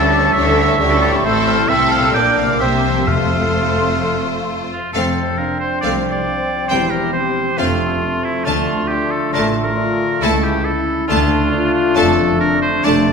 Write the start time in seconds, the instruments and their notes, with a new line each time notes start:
Already playing: double bass section D2, cello section D3, harp D3 C#4 E4 G4 A4, french horn section G3 C#4, bassoon A3, clarinet A4, oboe A5, flute section E6
0.00 viola section C#4, violin section E4 A4
0.11 viola section E4, violin section G4 C#5, flute section D6
0.22 viola section C#4, violin section E4 A4
0.33 double bass section D2, cello section D3, viola section E4, violin section G4 C#5, oboe E5, flute section C#6
0.46 viola section C#4, violin section E4 A4
0.56 viola section E4, violin section G4 C#5, flute section C#6
0.68 viola section C#4, violin section E4 A4
0.79 double bass section D2, cello section D3, bassoon G3, viola section E4, clarinet G4, violin section G4 C#5
0.91 viola section C#4, violin section E4 A4
1.02 viola section E4, violin section G4 C#5, clarinet G4, oboe A4
1.06 harp A2
1.11 harp C4 E4, viola section C#4, violin section E4 A4
1.20 double bass section A1, harp A4
1.25 cello section A2, bassoon A3, french horn section A3 E4, viola section C4, violin section E4 A4, clarinet A4, oboe C5, flute section E6
1.47 flute section F6
1.69 double bass section C2, cello section C3, viola section C4, bassoon C4, violin section E4 A4, clarinet A4, oboe E5, flute section E6
1.91 oboe F5
1.98 harp A#2
2.02 harp A#3
2.06 harp D4
2.11 french horn section D4, violin section D4, harp D5, oboe G5
2.15 double bass section A#1, cello section A#2, french horn section A#3, viola section A#3, bassoon D4, clarinet A#4, violin section D5, flute section D6
2.38 oboe F5
2.43 harp C3
2.47 harp A#3
2.52 harp G4
2.56 harp C5, oboe E5
2.60 double bass section C2, cello section C3, viola section A#3, bassoon C4, french horn section C4, violin section G4 C5, clarinet C5, flute section C6
2.89 harp F3
2.94 harp A3
2.98 harp F4
3.03 harp C5
3.07 double bass section F1, timpani F2, cello section F2, bassoon A3, viola section A3, french horn section A3, violin section F4 C5, clarinet A4, oboe F5, flute section C6
4.72 oboe F4
4.93 double bass section F1, cello section F2, harp F3, viola section A3, french horn section C4, bassoon C4, violin section C4 F5, oboe A4, clarinet C5
5.09 harp C4
5.23 harp C5
5.38 french horn section D4, oboe A#4, harp F5
5.53 harp C5
5.60 oboe C5
5.68 harp F4
5.81 cello section C2, double bass section C2, harp F3, viola section A3, violin section C4 F5, oboe D5
5.98 harp C4
6.12 harp C5, oboe D5
6.25 french horn section C4, harp F5
6.42 harp C5
6.56 harp F4
6.68 double bass section E1, cello section E2, harp E3, viola section G3, violin section C4 G5, french horn section E4, clarinet G4, oboe C5
6.85 harp E4
6.91 oboe A#4
6.99 harp G4
7.13 french horn section C4, oboe C5, harp C5
7.29 harp G4
7.43 harp C4
7.57 double bass section F1, cello section F2, harp F3, bassoon A3, viola section A3, violin section C4 F5, french horn section D4, oboe F4, clarinet F4
7.72 harp C4
7.86 harp A4
8.01 french horn section C4, harp F5
8.16 harp C5
8.24 oboe E4
8.30 harp A4
8.45 double bass section D2, cello section D2, harp D3, viola section A3, violin section D4 A5, french horn section D4, oboe F4
8.60 harp A3
8.74 harp F4
8.88 oboe G4, harp D5
9.04 harp A4
9.11 oboe A4
9.19 harp F4
9.33 double bass section A1, cello section A2, harp D3, viola section A3, violin section D4 A5, oboe A#4
9.48 harp A3
9.63 harp F4, oboe A#4
9.77 french horn section F4, harp D5
9.92 harp A4
10.06 harp F4
10.21 double bass section C#2, cello section C#2, harp C#3, viola section A3, violin section E4 A5, clarinet E4, french horn section E4, oboe A4
10.35 harp C#4
10.43 oboe G4
10.50 harp E4
10.65 oboe A4, harp A4
10.80 harp E4
10.95 harp A3
11.08 double bass section D2, cello section D2, harp D3, bassoon A3, viola section A3, violin section D4 A5, french horn section D4, clarinet D4, oboe F4
11.23 harp A3
11.38 harp A4
11.52 french horn section F4, harp D5
11.67 harp A4
11.74 oboe F4
11.81 harp D4
11.95 double bass section F1, harp F2, cello section F2, viola section A3, violin section D4 A5, oboe A4
12.11 harp F3
12.25 harp D4
12.40 french horn section D4, harp A4, oboe A#4
12.55 harp D4
12.62 oboe C5
12.69 harp A3
12.84 double bass section F1, harp F2, cello section F2, viola section A3, violin section D4 A5, french horn section D4, oboe D5
12.98 harp F3